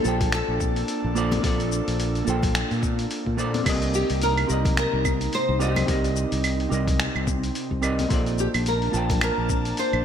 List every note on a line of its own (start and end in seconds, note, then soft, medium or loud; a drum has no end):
0.00 5.84 A#3 medium
0.00 1.12 A#3 medium
0.00 3.62 D4 medium
0.00 0.33 A4 loud
0.00 3.62 A4 medium
0.04 0.40 A#1 medium
0.04 1.13 F4 medium
0.04 1.13 A4 medium
0.04 1.14 C5 medium
0.04 1.15 G5 medium
0.04 shaker medium
0.21 kick loud
0.21 open hi-hat soft
0.21 low conga medium
0.21 shaker soft
0.32 3.07 A4 loud
0.32 finger snap medium
0.32 open hi-hat medium
0.32 shaker soft
0.48 0.82 A#1 medium
0.60 kick medium
0.60 high conga soft
0.60 shaker medium
0.76 open hi-hat soft
0.76 shaker soft
0.88 open hi-hat medium
0.88 shaker soft
1.04 1.38 A#1 medium
1.15 1.41 A#3 medium
1.15 1.41 F4 medium
1.15 1.41 A4 medium
1.15 1.41 C5 medium
1.15 1.42 D5 loud
1.15 shaker medium
1.32 open hi-hat soft
1.32 high conga medium
1.32 low conga medium
1.32 shaker soft
1.42 1.79 A#1 medium
1.42 2.23 A#3 medium
1.42 2.24 F4 medium
1.42 2.25 A4 medium
1.42 2.25 C5 medium
1.42 kick loud
1.42 open hi-hat medium
1.42 shaker soft
1.47 2.26 D5 medium
1.60 open hi-hat soft
1.60 shaker soft
1.72 shaker medium
1.88 2.21 A#1 medium
1.88 open hi-hat soft
1.88 shaker soft
2.00 open hi-hat medium
2.00 shaker soft
2.15 open hi-hat soft
2.15 shaker soft
2.25 2.63 A#1 medium
2.25 3.34 A#3 medium
2.25 3.35 F4 medium
2.25 3.36 A4 medium
2.25 3.36 C5 medium
2.25 shaker medium
2.30 3.37 G5 medium
2.43 kick loud
2.43 open hi-hat soft
2.43 low conga medium
2.43 shaker soft
2.55 finger snap medium
2.55 open hi-hat soft
2.55 shaker soft
2.71 3.04 A#2 medium
2.71 open hi-hat soft
2.71 shaker soft
2.83 kick medium
2.83 high conga medium
2.83 shaker medium
2.99 open hi-hat soft
2.99 shaker soft
3.11 open hi-hat medium
3.11 shaker soft
3.26 3.60 A#2 medium
3.26 kick medium
3.37 3.63 A#3 medium
3.37 3.63 F4 medium
3.37 3.63 A4 medium
3.37 3.64 C5 medium
3.37 3.64 D5 loud
3.37 shaker medium
3.54 open hi-hat soft
3.54 high conga medium
3.54 shaker soft
3.64 4.02 C2 loud
3.64 8.06 C3 medium
3.64 4.45 C4 medium
3.64 8.06 D#4 medium
3.64 4.46 G4 medium
3.64 4.47 A#4 medium
3.64 4.47 D5 medium
3.64 kick loud
3.64 open hi-hat medium
3.64 crash medium
3.64 claves medium
3.64 shaker soft
3.69 4.48 D#5 medium
3.82 open hi-hat soft
3.82 shaker soft
3.94 4.23 G4 medium
3.94 shaker medium
4.10 4.43 C2 medium
4.10 open hi-hat soft
4.10 shaker soft
4.22 4.74 A#4 medium
4.22 open hi-hat medium
4.22 shaker soft
4.37 open hi-hat soft
4.37 claves medium
4.47 4.85 C2 medium
4.47 5.57 C4 medium
4.47 5.57 G4 medium
4.47 5.58 A#4 medium
4.47 5.58 D5 medium
4.47 shaker medium
4.52 5.59 D#5 medium
4.65 kick loud
4.65 open hi-hat soft
4.65 low conga medium
4.65 shaker soft
4.77 5.34 A#4 loud
4.77 finger snap medium
4.77 open hi-hat medium
4.77 shaker soft
4.93 5.27 C2 medium
5.05 kick loud
5.05 high conga medium
5.05 claves medium
5.05 shaker medium
5.21 open hi-hat soft
5.21 shaker soft
5.33 5.60 C5 medium
5.33 open hi-hat medium
5.33 shaker soft
5.49 5.82 C2 medium
5.59 5.84 C4 medium
5.59 5.85 G4 medium
5.59 7.80 G4 medium
5.59 5.85 A#4 medium
5.59 5.86 D5 medium
5.59 5.86 D#5 loud
5.59 shaker medium
5.76 open hi-hat soft
5.76 high conga medium
5.76 low conga loud
5.76 claves medium
5.76 shaker soft
5.86 6.24 C2 loud
5.86 6.67 C4 medium
5.86 8.08 C4 medium
5.86 6.68 G4 medium
5.86 6.69 A#4 medium
5.86 6.69 D5 medium
5.86 kick loud
5.86 open hi-hat medium
5.86 shaker soft
5.91 6.70 D#5 medium
6.04 open hi-hat soft
6.04 shaker soft
6.16 shaker medium
6.32 6.66 C2 medium
6.32 open hi-hat soft
6.32 shaker soft
6.44 open hi-hat medium
6.44 claves medium
6.44 shaker soft
6.60 open hi-hat soft
6.69 7.07 C2 medium
6.69 7.79 C4 medium
6.69 7.79 G4 medium
6.69 7.80 A#4 medium
6.69 7.81 D5 medium
6.69 shaker medium
6.74 7.81 D#5 medium
6.88 kick loud
6.88 open hi-hat soft
6.88 low conga medium
6.88 shaker soft
7.00 finger snap medium
7.00 open hi-hat soft
7.00 shaker soft
7.15 7.49 C2 medium
7.15 claves medium
7.27 kick loud
7.27 high conga medium
7.27 shaker medium
7.43 open hi-hat soft
7.43 shaker soft
7.55 open hi-hat medium
7.55 shaker soft
7.71 8.04 C2 medium
7.71 kick medium
7.82 8.07 C4 loud
7.82 8.07 G4 medium
7.82 8.08 A#4 medium
7.82 8.08 D5 medium
7.82 8.08 D#5 loud
7.82 claves medium
7.82 shaker medium
7.99 open hi-hat soft
7.99 high conga medium
7.99 shaker soft
8.09 8.46 A#1 loud
8.09 8.90 A#3 medium
8.09 10.05 A#3 medium
8.09 10.05 D4 medium
8.09 8.91 F4 medium
8.09 8.91 A4 medium
8.09 8.92 C5 medium
8.09 10.05 A5 medium
8.09 kick loud
8.09 open hi-hat medium
8.09 shaker soft
8.14 8.93 D5 medium
8.26 open hi-hat soft
8.26 shaker soft
8.38 8.47 G4 medium
8.38 shaker medium
8.54 8.88 A#1 medium
8.54 open hi-hat soft
8.54 claves medium
8.54 shaker soft
8.66 9.23 A#4 medium
8.66 open hi-hat soft
8.66 shaker soft
8.82 open hi-hat soft
8.92 9.29 A#1 medium
8.92 10.01 A#3 medium
8.92 10.02 F4 medium
8.92 10.03 C5 medium
8.92 10.02 A5 medium
8.92 shaker medium
8.97 10.04 G5 medium
9.10 kick loud
9.10 open hi-hat soft
9.10 low conga medium
9.10 shaker soft
9.21 9.79 A#4 loud
9.21 finger snap medium
9.21 open hi-hat soft
9.21 claves medium
9.21 shaker soft
9.38 9.71 A#1 medium
9.49 kick loud
9.49 high conga medium
9.49 shaker medium
9.65 open hi-hat soft
9.65 shaker soft
9.77 10.05 C5 medium
9.77 open hi-hat medium
9.77 shaker soft
9.93 10.05 A#1 medium
9.93 claves medium